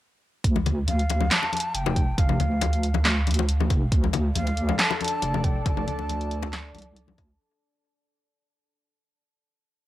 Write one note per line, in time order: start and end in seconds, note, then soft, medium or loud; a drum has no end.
0.44 0.86 D2 loud
0.44 kick loud
0.44 closed hi-hat medium
0.56 high conga medium
0.66 closed hi-hat medium
0.66 muted conga medium
0.66 low conga medium
0.88 1.29 D2 loud
0.88 1.33 F5 loud
0.88 closed hi-hat medium
0.88 high conga medium
0.99 closed hi-hat soft
1.10 closed hi-hat medium
1.10 muted conga medium
1.21 high conga medium
1.31 1.76 A5 loud
1.31 snare loud
1.31 clap medium
1.31 closed hi-hat medium
1.43 muted conga medium
1.53 closed hi-hat medium
1.53 high conga medium
1.57 closed hi-hat medium
1.60 closed hi-hat medium
1.75 2.38 F1 medium
1.75 2.20 G5 loud
1.75 closed hi-hat medium
1.86 muted conga medium
1.86 high conga medium
1.96 kick loud
1.96 closed hi-hat medium
2.18 3.05 F5 medium
2.18 kick loud
2.18 closed hi-hat medium
2.18 muted conga soft
2.29 high conga medium
2.40 3.69 D2 loud
2.40 closed hi-hat medium
2.40 low conga medium
2.61 closed hi-hat medium
2.61 muted conga medium
2.61 high conga medium
2.73 closed hi-hat soft
2.83 closed hi-hat medium
2.94 muted conga medium
2.94 high conga loud
3.05 snare loud
3.05 clap loud
3.05 closed hi-hat medium
3.27 closed hi-hat medium
3.27 high conga medium
3.31 closed hi-hat medium
3.34 closed hi-hat medium
3.39 muted conga medium
3.49 closed hi-hat medium
3.60 high conga loud
3.70 3.90 F1 loud
3.70 kick loud
3.70 closed hi-hat medium
3.70 muted conga medium
3.92 4.34 D2 loud
3.92 7.36 D4 medium
3.92 7.36 A4 medium
3.92 7.36 D5 loud
3.92 kick loud
3.92 closed hi-hat medium
4.04 high conga medium
4.13 closed hi-hat medium
4.13 muted conga medium
4.13 low conga medium
4.35 4.77 D2 medium
4.35 4.76 F5 loud
4.35 closed hi-hat medium
4.35 high conga medium
4.47 closed hi-hat soft
4.47 muted conga soft
4.57 closed hi-hat medium
4.69 high conga loud
4.79 4.99 A5 loud
4.79 snare loud
4.79 clap loud
4.79 closed hi-hat medium
4.91 muted conga medium
5.00 5.46 A5 loud
5.00 closed hi-hat soft
5.00 high conga medium
5.05 closed hi-hat medium
5.08 closed hi-hat medium
5.22 5.86 F1 medium
5.22 closed hi-hat medium
5.22 muted conga medium
5.34 high conga medium
5.44 5.65 G5 loud
5.44 kick loud
5.44 closed hi-hat medium
5.66 6.92 A5 loud
5.66 kick loud
5.66 closed hi-hat medium
5.66 muted conga medium
5.77 high conga medium
5.88 6.73 D2 loud
5.88 closed hi-hat soft
5.88 low conga medium
5.99 muted conga soft
6.09 closed hi-hat medium
6.09 high conga medium
6.21 closed hi-hat soft
6.31 closed hi-hat medium
6.42 muted conga medium
6.42 high conga loud
6.53 snare loud
6.53 clap medium
6.53 closed hi-hat medium
6.75 7.16 C2 loud
6.75 closed hi-hat soft
6.75 muted conga soft
6.75 high conga medium
6.78 closed hi-hat medium
6.82 closed hi-hat medium
6.96 closed hi-hat medium
7.08 high conga loud
7.18 7.38 D2 loud
7.18 kick loud
7.18 closed hi-hat medium
7.18 muted conga medium